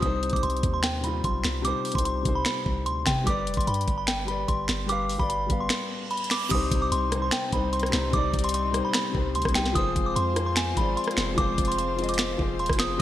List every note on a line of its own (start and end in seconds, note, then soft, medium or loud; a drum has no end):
0.00 0.32 C2 loud
0.00 0.60 C3 loud
0.00 0.61 G3 medium
0.00 0.62 D#4 loud
0.00 0.31 D#6 medium
0.00 kick loud
0.00 closed hi-hat medium
0.06 0.63 C5 loud
0.23 closed hi-hat medium
0.30 0.42 C2 loud
0.30 0.42 D6 medium
0.30 kick loud
0.30 closed hi-hat medium
0.36 closed hi-hat medium
0.43 0.63 C2 loud
0.43 0.72 C6 medium
0.43 closed hi-hat medium
0.50 closed hi-hat medium
0.57 closed hi-hat medium
0.63 1.22 D#2 loud
0.63 kick loud
0.63 closed hi-hat medium
0.74 0.82 C6 medium
0.83 1.01 G5 medium
0.83 finger snap medium
0.83 snare loud
0.83 closed hi-hat medium
1.01 1.46 C3 medium
1.01 1.47 G3 medium
1.01 1.48 D#4 medium
1.01 1.21 B5 medium
1.01 closed hi-hat medium
1.06 1.49 F4 medium
1.24 1.44 B1 loud
1.24 1.63 C6 medium
1.24 kick loud
1.24 closed hi-hat medium
1.44 1.74 C2 loud
1.44 finger snap medium
1.44 snare loud
1.62 1.85 C3 loud
1.62 1.86 G3 medium
1.62 1.87 D#4 medium
1.62 1.93 D6 loud
1.62 closed hi-hat medium
1.68 1.88 C5 loud
1.85 closed hi-hat medium
1.85 open hi-hat medium
1.92 2.24 C2 loud
1.92 2.16 C3 medium
1.92 2.17 G3 medium
1.92 2.04 C6 medium
1.92 kick loud
1.92 closed hi-hat medium
1.97 2.18 D#4 medium
1.97 2.19 C5 medium
1.97 closed hi-hat medium
2.05 2.34 C6 medium
2.05 closed hi-hat medium
2.23 2.45 C2 loud
2.23 2.83 C3 medium
2.23 2.84 G3 medium
2.23 2.84 D#4 medium
2.23 kick loud
2.23 closed hi-hat medium
2.28 2.85 C5 medium
2.35 2.44 B5 medium
2.45 finger snap loud
2.45 snare loud
2.45 closed hi-hat medium
2.66 2.88 C2 loud
2.66 kick medium
2.86 3.06 D2 loud
2.86 3.04 C6 medium
2.86 closed hi-hat medium
3.06 3.26 C3 loud
3.06 3.24 G5 medium
3.06 finger snap medium
3.06 kick loud
3.06 snare loud
3.06 closed hi-hat medium
3.24 3.49 G1 loud
3.24 3.84 G3 loud
3.24 3.85 G4 loud
3.24 3.86 B4 medium
3.24 3.55 D6 loud
3.24 kick loud
3.24 closed hi-hat medium
3.29 3.87 D5 loud
3.47 3.57 F1 loud
3.47 closed hi-hat medium
3.54 3.67 G1 loud
3.54 3.66 C6 medium
3.54 kick loud
3.54 closed hi-hat medium
3.61 closed hi-hat medium
3.67 3.87 G2 loud
3.67 3.96 B5 medium
3.67 closed hi-hat medium
3.74 closed hi-hat medium
3.81 closed hi-hat medium
3.88 4.46 G1 loud
3.88 kick medium
3.88 closed hi-hat medium
3.98 4.06 B5 medium
4.07 4.25 G5 medium
4.07 finger snap loud
4.07 snare loud
4.07 closed hi-hat medium
4.25 4.70 G3 medium
4.25 4.71 G4 medium
4.25 4.72 B4 medium
4.25 4.46 B5 medium
4.25 closed hi-hat medium
4.31 4.73 D5 medium
4.48 4.68 G1 loud
4.48 4.86 C6 medium
4.48 kick loud
4.48 closed hi-hat medium
4.68 5.17 G1 loud
4.68 finger snap medium
4.68 snare loud
4.86 5.10 G3 loud
4.86 5.11 G4 medium
4.86 5.11 B4 medium
4.86 5.18 D6 loud
4.86 closed hi-hat medium
4.92 5.12 F5 loud
5.09 open hi-hat medium
5.16 5.49 G1 loud
5.16 5.40 G3 medium
5.16 5.41 G4 medium
5.16 5.42 B4 medium
5.16 5.28 B5 medium
5.16 kick loud
5.22 5.43 D5 medium
5.29 5.58 B5 medium
5.29 closed hi-hat medium
5.47 5.69 G1 loud
5.47 6.07 G3 medium
5.47 6.09 B3 medium
5.47 6.08 G4 medium
5.47 kick loud
5.47 closed hi-hat medium
5.52 6.09 F5 medium
5.60 6.08 C6 medium
5.69 finger snap medium
5.69 snare loud
5.69 closed hi-hat medium
5.69 reverse cymbal medium
6.11 6.28 B5 medium
6.11 closed hi-hat soft
6.17 closed hi-hat medium
6.24 closed hi-hat medium
6.30 6.49 D6 medium
6.30 finger snap medium
6.30 snare loud
6.30 closed hi-hat medium
6.49 6.71 C2 loud
6.49 6.94 C3 loud
6.49 6.95 G3 medium
6.49 9.72 G3 medium
6.49 9.72 C4 medium
6.49 9.72 D#4 medium
6.49 6.96 D#4 medium
6.49 13.02 C5 medium
6.49 6.80 D#6 loud
6.49 kick loud
6.49 closed hi-hat medium
6.49 crash loud
6.55 6.97 C5 loud
6.71 6.91 C2 loud
6.71 kick loud
6.71 closed hi-hat medium
6.82 6.90 D6 medium
6.92 7.31 C2 loud
6.92 7.20 C6 medium
6.92 closed hi-hat medium
7.10 7.40 C3 medium
7.10 7.41 G3 medium
7.10 7.42 D#4 medium
7.10 cross-stick medium
7.10 closed hi-hat medium
7.15 7.43 C5 medium
7.22 7.31 C6 medium
7.31 7.50 G5 loud
7.31 finger snap loud
7.31 snare loud
7.31 closed hi-hat medium
7.50 7.91 C2 loud
7.50 7.80 C3 medium
7.50 7.81 G3 medium
7.50 7.82 D#4 medium
7.50 7.70 B5 medium
7.50 kick medium
7.50 closed hi-hat medium
7.55 7.83 C5 medium
7.73 8.11 C6 medium
7.73 closed hi-hat medium
7.80 cross-stick medium
7.80 closed hi-hat medium
7.86 8.06 C3 medium
7.86 closed hi-hat medium
7.92 8.13 C2 loud
7.92 8.07 G3 medium
7.92 8.08 D#4 medium
7.92 8.09 C5 medium
7.92 finger snap medium
7.92 snare loud
8.11 8.33 C2 loud
8.11 8.56 C3 loud
8.11 8.57 G3 medium
8.11 8.58 D#4 loud
8.11 8.42 D6 loud
8.11 kick loud
8.11 closed hi-hat medium
8.16 8.59 D5 loud
8.34 8.82 C2 loud
8.34 kick loud
8.34 closed hi-hat medium
8.39 closed hi-hat medium
8.44 8.53 C6 medium
8.44 closed hi-hat medium
8.49 closed hi-hat medium
8.54 8.83 C6 medium
8.54 closed hi-hat medium
8.71 9.02 C3 medium
8.71 9.03 G3 medium
8.71 9.04 D#4 medium
8.71 cross-stick medium
8.71 closed hi-hat medium
8.77 9.05 C5 medium
8.85 8.93 B5 medium
8.93 9.33 B5 medium
8.93 finger snap loud
8.93 snare loud
8.93 closed hi-hat medium
9.12 9.37 C2 loud
9.12 9.42 C3 medium
9.12 9.43 G3 medium
9.12 9.44 D#4 medium
9.12 kick medium
9.17 9.45 C5 medium
9.35 9.45 D2 loud
9.35 9.53 C6 medium
9.35 closed hi-hat medium
9.42 9.74 C2 loud
9.42 kick loud
9.42 cross-stick medium
9.42 closed hi-hat medium
9.49 9.68 C3 medium
9.49 closed hi-hat medium
9.54 9.69 G3 medium
9.54 9.70 D#4 medium
9.54 9.71 G4 medium
9.54 9.73 G5 medium
9.54 finger snap medium
9.54 snare loud
9.54 closed hi-hat medium
9.65 snare medium
9.73 9.95 F1 loud
9.73 10.18 F3 loud
9.73 12.97 G#3 medium
9.73 13.02 C4 medium
9.73 10.19 F4 medium
9.73 12.97 F4 medium
9.73 10.20 G#4 medium
9.73 10.04 D#6 loud
9.73 kick loud
9.73 closed hi-hat medium
9.78 10.21 C5 loud
9.96 10.15 F1 loud
9.96 kick loud
9.96 closed hi-hat medium
10.06 10.15 D6 medium
10.16 10.74 F2 loud
10.16 10.45 C6 medium
10.16 closed hi-hat loud
10.34 10.64 F3 medium
10.34 10.65 F4 medium
10.34 10.66 G#4 medium
10.34 cross-stick medium
10.34 closed hi-hat medium
10.39 10.67 C5 medium
10.46 10.55 C6 medium
10.56 10.74 G#5 medium
10.56 finger snap loud
10.56 snare loud
10.56 closed hi-hat medium
10.74 10.96 G#1 loud
10.74 11.05 F3 medium
10.74 11.06 F4 medium
10.74 11.07 G#4 medium
10.74 10.95 B5 medium
10.74 kick medium
10.74 closed hi-hat medium
10.80 11.08 D5 medium
10.97 11.35 C6 medium
10.97 closed hi-hat medium
11.04 cross-stick medium
11.04 closed hi-hat medium
11.11 11.30 F3 medium
11.11 closed hi-hat medium
11.16 11.37 F1 loud
11.16 11.31 F4 medium
11.16 11.32 G#4 medium
11.16 11.33 C5 medium
11.16 finger snap medium
11.16 snare loud
11.34 11.57 F1 loud
11.34 11.80 F3 loud
11.34 11.81 F4 medium
11.34 11.82 G#4 medium
11.34 11.66 D6 loud
11.34 kick loud
11.34 closed hi-hat medium
11.40 11.83 C5 loud
11.58 12.36 F1 loud
11.58 kick loud
11.58 closed hi-hat medium
11.65 11.77 C6 medium
11.65 closed hi-hat medium
11.72 closed hi-hat medium
11.78 12.07 C6 medium
11.78 closed hi-hat medium
11.96 12.27 F3 medium
11.96 12.28 F4 medium
11.96 12.29 G#4 medium
11.96 closed hi-hat soft
11.96 open hi-hat medium
12.02 12.29 D#5 medium
12.02 closed hi-hat medium
12.09 12.56 D6 medium
12.09 closed hi-hat medium
12.14 closed hi-hat medium
12.18 finger snap loud
12.18 snare loud
12.18 closed hi-hat medium
12.36 12.61 F1 loud
12.36 12.67 F3 medium
12.36 12.68 F4 medium
12.36 12.69 G#4 medium
12.36 kick medium
12.42 12.70 C5 medium
12.59 12.69 D#1 loud
12.59 12.77 C6 medium
12.59 closed hi-hat soft
12.66 12.99 F1 loud
12.66 kick loud
12.66 cross-stick medium
12.66 closed hi-hat medium
12.73 12.93 F3 medium
12.73 closed hi-hat medium
12.78 12.93 F4 medium
12.78 12.94 G#4 medium
12.78 12.95 C5 medium
12.78 12.97 D#6 medium
12.78 finger snap medium
12.78 snare loud
12.78 closed hi-hat medium
12.98 13.02 C3 loud